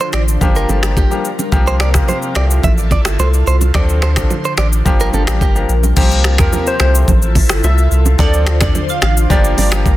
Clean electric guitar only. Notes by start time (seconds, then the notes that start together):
0.01 C5
0.14 D5
0.56 A#4
0.70 A4
0.97 G4
1.68 C5
1.81 D5
2.09 C5
2.36 D5
2.64 E5
2.92 D5
3.20 C5
3.47 C5
3.75 D5
4.03 C5
4.45 C5
4.59 D5
5.01 A#4
5.14 A4
5.42 G4